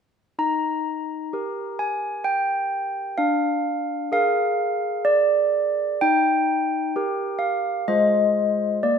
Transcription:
0.39 1.30 D#4 medium
0.39 1.77 A#5 medium
1.33 3.16 G4 soft
1.33 3.16 A#4 soft
1.79 2.25 G#5 medium
2.24 3.15 G5 medium
3.18 4.09 D4 medium
3.18 4.08 F5 medium
4.12 5.98 G#4 soft
4.12 5.98 A#4 medium
4.12 5.03 F5 medium
5.05 5.97 D5 medium
6.01 6.92 D#4 medium
6.01 7.36 G5 medium
6.96 7.84 G4 medium
6.96 7.84 A#4 soft
7.39 7.84 F5 medium
7.88 8.78 G#3 medium
7.88 8.77 F4 soft
7.88 8.77 C5 soft
7.88 8.77 D#5 medium
8.83 8.99 A#3 medium
8.83 8.99 D5 medium

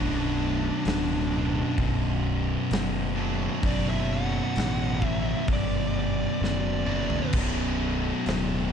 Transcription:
0.00 0.69 B0 medium
0.00 1.33 B1 loud
0.00 3.19 B1 loud
0.00 1.29 F#2 loud
0.00 3.15 F#2 medium
0.00 1.31 B2 loud
0.00 3.18 B2 loud
0.00 3.17 F#3 loud
0.00 1.74 D4 loud
0.00 3.16 D4 loud
0.85 1.61 D1 medium
0.85 snare loud
0.85 open hi-hat medium
1.31 2.70 B1 medium
1.31 2.68 F#2 medium
1.31 2.73 B2 loud
1.78 2.54 B0 medium
1.78 kick loud
1.78 open hi-hat medium
2.71 3.47 F#1 loud
2.71 3.62 B1 medium
2.71 3.61 F#2 medium
2.71 3.65 B2 medium
2.71 snare loud
2.71 open hi-hat medium
3.16 3.62 B1 medium
3.16 3.62 F#2 medium
3.16 3.64 B2 medium
3.16 3.65 F#3 medium
3.16 3.66 D4 medium
3.63 4.40 F#1 medium
3.63 6.85 B1 medium
3.63 4.99 B1 medium
3.63 6.85 F#2 loud
3.63 5.00 F#2 loud
3.63 6.86 B2 medium
3.63 5.01 B2 loud
3.63 6.86 F#3 loud
3.63 6.85 D4 loud
3.63 3.87 D5 loud
3.63 kick loud
3.63 open hi-hat medium
3.89 4.11 E5 medium
4.12 5.07 F#5 loud
4.56 5.33 A1 loud
4.56 snare loud
4.56 open hi-hat medium
5.02 6.39 B1 medium
5.02 6.39 F#2 medium
5.02 6.38 B2 medium
5.02 kick medium
5.07 5.46 E5 loud
5.48 6.25 G1 medium
5.48 kick loud
5.48 open hi-hat medium
5.53 5.96 D5 medium
5.99 6.42 D5 loud
6.40 7.17 F#1 loud
6.40 7.31 B1 medium
6.40 7.31 F#2 medium
6.40 7.32 B2 medium
6.40 snare medium
6.45 7.33 D5 loud
6.87 7.32 B1 medium
6.87 7.32 F#2 medium
6.87 7.32 B2 medium
6.87 7.31 F#3 medium
6.87 7.31 D4 medium
6.87 mid tom medium
7.10 floor tom loud
7.32 8.10 B0 medium
7.32 8.72 B1 medium
7.32 8.72 B1 loud
7.32 8.70 F#2 loud
7.32 8.72 F#2 loud
7.32 8.72 B2 loud
7.32 8.72 F#3 loud
7.32 kick loud
7.32 crash loud
7.37 8.72 D4 loud
8.26 8.72 D1 medium
8.26 snare loud
8.26 open hi-hat medium

